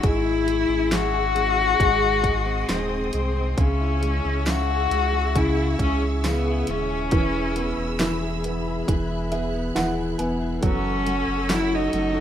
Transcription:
Already playing: A3 C#4 C#6 E6
0.03 G#1 G#2 G#3 E4 G#4 E5, kick, closed hi-hat
0.24 E4
0.46 G#3 G#4, closed hi-hat
0.68 G#1 C#4
0.90 G#3 E4, snare, closed hi-hat
0.94 F#4
1.13 G#4
1.35 G#3 C#4, closed hi-hat
1.58 G#4
1.79 G#1 G#2 G#3 G#4 D#5 C6 D#6, kick, closed hi-hat
2.02 D#4
2.24 G#3 G#4, kick, closed hi-hat
2.46 C4
2.68 D#1 G#3 C4 D#4, snare, closed hi-hat
2.91 G#4
3.13 C2 G#3 C4, closed hi-hat
3.36 G#4
3.56 C#2 C#3 C#4 G#4 E5 C#6 E6, kick, closed hi-hat
3.81 E4
4.02 G#3 G#4, closed hi-hat
4.25 C#2 C#4
4.46 C#3 E4 F#4, snare, closed hi-hat, tambourine
4.69 G#4
4.91 C#2 G#3 C#4, closed hi-hat
5.13 G#4
5.35 C#3 E4 G#4, kick, closed hi-hat
5.57 E4
5.79 C#2 G#3 C#4 G#4, kick, closed hi-hat
6.02 C#4
6.24 C#3 B3 E4, snare, closed hi-hat, tambourine
6.46 G#4
6.67 D#1 G#3 C#4, closed hi-hat
6.90 G#4
7.11 E1 E3 G#4 B5 E6, kick, closed hi-hat
7.34 E4
7.56 B3 G#4, closed hi-hat
7.77 E1 B3
7.99 E3 E4, snare, closed hi-hat, tambourine
8.22 G#4
8.44 B3, closed hi-hat
8.67 G#4
8.86 E1 E3 G#4 F#6, kick, closed hi-hat
9.10 E4
9.31 B3 G#4 E5, closed hi-hat
9.54 B3
9.75 D#1 E3 E4 F#5, snare, closed hi-hat, tambourine
9.98 G#4
10.18 E1 B3 G#5, closed hi-hat
10.41 G#4
10.62 F#1 F#2 F#3 F#4 A4 F#5 C#6 E6, kick, closed hi-hat
10.67 C#4
10.85 C#4
11.06 F#3 F#4, closed hi-hat
11.28 F#1 A3
11.49 F#3 C#4, snare, closed hi-hat, tambourine
11.53 E4
11.71 D#4 F#4
11.93 F#1 F#3 A3, closed hi-hat
12.14 F#4

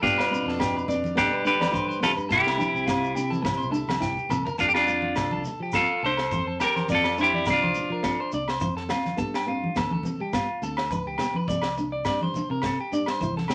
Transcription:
0.02 G2 B2 B3 D4 F4 G4, kick
0.06 shekere
0.18 B4, snare, low agogo
0.22 shekere
0.30 C4 B4, shekere
0.46 F2 A4, snare
0.58 B3 G4, kick, snare, low agogo, shekere
0.77 B4, shekere
0.88 F2 C4 D5, low conga, shekere
1.04 high conga, shekere
1.15 B2 B3 D4 G4 A4, kick, snare, low agogo, shekere
1.31 G2 B4
1.45 D3 D4 G4 B4, shekere
1.60 D5, snare, high conga, low agogo, shekere
1.72 G2 F4 C5, kick, shekere
1.89 C5, shekere
2.00 B3 F4 A4, snare, high conga, low conga, low agogo, shekere
2.04 C3
2.17 G2 B4, shekere
2.29 C2 C3 C4 E4 G4 A4, kick, shekere
2.47 snare, low agogo, shekere
2.57 D4 G4, high conga, shekere
2.74 C2, shekere
2.86 C4 F4, kick, snare, low agogo, shekere
3.04 shekere
3.15 C3 D4 G4, shekere
3.30 A4, high conga, shekere
3.42 C4, muted clean electric guitar stroke, kick, snare, high conga, low agogo, shekere
3.57 C2 C5
3.62 shekere
3.71 D4 A4, shekere
3.88 C2, snare, high conga, low agogo, shekere
4.00 E4 G4, kick, snare, shekere
4.17 low conga, shekere
4.29 C2 C4 A4, mid tom, high conga, low conga, low agogo, shekere
4.46 A#4, floor tom, shekere
4.58 F2 C4 D4 F4 A4, kick, shekere
4.69 G4
4.74 D4 F4 G4, snare, low agogo
4.87 D4 F4, shekere
5.02 high conga
5.16 C2 C4 A4, kick, snare, low agogo, shekere
5.31 A4, high conga
5.44 D4, low conga, shekere
5.60 F3 G4
5.72 F4 A4, kick, snare, low agogo, shekere
5.77 C4
6.03 C2 D4 A4 C5
6.17 snare, low agogo
6.31 F2 F4 C5, kick, high conga, shekere
6.47 A4
6.60 C4 G4 A4 A#4, snare, low conga, low agogo, shekere
6.76 C5, snare, high conga
6.88 F2 C4 F4 D5, kick, shekere
6.95 A4
7.04 snare, low agogo
7.18 D4 E4 C5, shekere
7.23 G4
7.33 D5, high conga
7.46 C2 C4 D5, kick, snare, low agogo, shekere
7.50 D4 F4
7.63 C5, high conga
7.74 D4, low conga, shekere
7.90 F3 A#4
8.03 C4 A4, kick, snare, low agogo, shekere
8.20 C5
8.32 C2 D4 D5, shekere
8.48 C5, snare, low agogo
8.61 F2 F4 C5, kick, high conga, shekere
8.77 A4, snare
8.89 C4 F4, snare, low conga, low agogo, shekere
9.05 snare, high conga
9.17 G2 B3 A4, kick, shekere
9.34 G4, snare, low agogo
9.47 C4 F4
9.64 high conga
9.76 D2 B3 A4, kick, snare, low agogo, shekere
9.91 A4, high conga
10.03 C4, low conga, shekere
10.20 G3 G4
10.33 B3 F4, kick, snare, low agogo, shekere
10.62 D2 C4 A4, shekere
10.77 snare, low agogo
10.90 C#2 D4 B4, kick, high conga, shekere
11.07 G4
11.18 B3 G4, snare, low conga, low agogo, shekere
11.34 B4, high conga
11.48 C2 C4 D5, kick, shekere
11.62 snare, low agogo
11.77 D4, muted clean electric guitar stroke, shekere
11.92 D5
12.05 G2 C4 D5, kick, snare, low agogo, shekere
12.21 C5, high conga
12.34 D4, low conga, shekere
12.50 C3 A#4
12.62 C4 A4, kick, snare, low agogo, shekere
12.80 G4
12.92 G2 D4 D5, shekere
13.06 C5, snare, low agogo
13.20 C2 E4 C5, kick, high conga, shekere
13.37 A4, snare, high conga
13.48 C4 G4, snare, low conga, low agogo, shekere

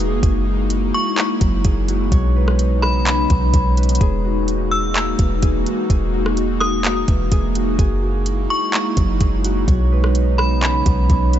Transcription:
Already playing: E1 E3 G#3 A#3 D#4 G#4
0.00 F#4, closed hi-hat
0.23 F#1 E4 G#4, kick, closed hi-hat
0.47 F#4
0.70 closed hi-hat
0.94 C#6
1.17 A#3, clap, closed hi-hat
1.41 F#1 F#3, kick, closed hi-hat
1.65 F#1 G#4, kick, closed hi-hat
1.88 F#4, closed hi-hat
2.11 B1 C#3 B3 D#4 C#5, kick, closed hi-hat
2.36 B4
2.48 cross-stick
2.59 closed hi-hat
2.82 B5, cross-stick
3.06 C#4, clap, closed hi-hat
3.30 B1 B3, kick, closed hi-hat
3.53 B1 C#5, kick, closed hi-hat
3.77 B4, closed hi-hat
3.83 closed hi-hat
3.89 closed hi-hat
3.95 closed hi-hat
4.01 E1 A#3 D#4 F#4 G#4, kick, closed hi-hat
4.25 F#4
4.48 closed hi-hat
4.71 E6
4.95 A#3, clap, closed hi-hat
5.19 E1 E3, kick, closed hi-hat
5.42 E1 G#4, kick, closed hi-hat
5.66 F#4, closed hi-hat
5.90 E1 G#4, kick, closed hi-hat
6.14 F#4
6.26 cross-stick
6.37 closed hi-hat
6.60 D#6, cross-stick
6.84 A#3, clap, closed hi-hat
7.08 E1 E3, kick, closed hi-hat
7.32 E1 G#4, kick, closed hi-hat
7.55 F#4, closed hi-hat
7.79 F#1 G#3 D#4 E4 G#4, kick, closed hi-hat
8.02 F#4
8.26 closed hi-hat
8.50 C#6
8.73 A#3, clap, closed hi-hat
8.97 F#1 F#3, kick, closed hi-hat
9.21 F#1 G#4, kick, closed hi-hat
9.44 F#4, closed hi-hat
9.67 B1 C#3 B3 D#4 C#5, kick, closed hi-hat
9.92 B4
10.04 cross-stick
10.15 closed hi-hat
10.38 B5, cross-stick
10.62 C#4, clap, closed hi-hat
10.86 B1 B3, kick, closed hi-hat
11.09 B1 C#5, kick, closed hi-hat
11.33 B4, closed hi-hat

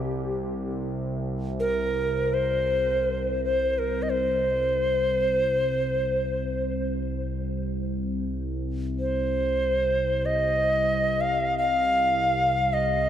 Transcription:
Already playing: C2 G4
1.60 A#4
2.34 C5
3.44 C5
3.78 A#4
4.02 D#5
4.10 C5
4.29 C2
9.00 C5
10.25 D#5
11.21 F5
11.58 F5
12.73 D#5

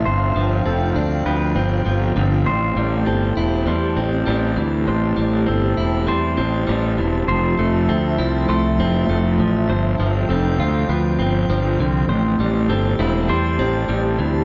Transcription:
Already playing: C4 F5
0.05 G1 G2 C4 C5 G5
0.35 G1 F3
0.65 F1 C4 A4
0.96 D2 D4
1.26 D2 F3 B4
1.55 G1 C4
1.85 G1 F3
2.16 G1 D3
2.46 A1 A2 G4 C5 A5
2.76 A1 G3
3.06 G1 C4 A4
3.37 E1 E4
3.66 E2 G3 C5
3.97 A1 C4
4.26 A1 G3
4.56 D2 E3
4.87 A1 A2 C5
5.17 A1 G3
5.47 G1 C4 A4
5.77 E1 E4
6.07 E2 G3 C5
6.37 A1 C4
6.67 A1 G3
6.98 E1 E3
7.28 F1 F3 C5 E5
7.59 F1 A3
7.89 D2 C4 A4
8.18 C2 E4
8.49 C2 A3 C5
8.79 F1 C4
9.09 F1 A3
9.39 A1 F3
9.69 G1 G2 C4 C5 G5
9.99 G1 F3
10.29 F1 C4 A4
10.59 D2 F4
10.89 D2 F3 B4
11.19 G1 C4
11.49 G1 F3
11.79 C2 D3
12.08 A1 A2 G4 C5 A5
12.39 A1 G3
12.69 G1 C4 A4
12.99 E1 E4
13.29 E2 G3 C5
13.59 A1 C4
13.89 A1 G3
14.18 D2 E3

